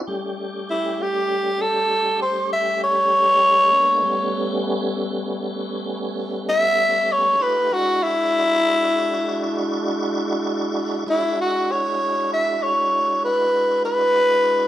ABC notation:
X:1
M:12/8
L:1/8
Q:3/8=65
K:Amix
V:1 name="Tenor saxophone"
z2 E G2 A2 =c e ^c3- | c3 z6 e2 c | B F E6 z4 | E F c2 e c2 B2 B3 |]
V:2 name="Tonewheel organ"
[G,A,CG]12 | [^G,_B,=B,D] [=G,A,B,C]8- [G,A,B,C]3 | [A,^D=FG] [^G,=DE^F]8- [G,DEF]3 | [^G,DEF]12 |]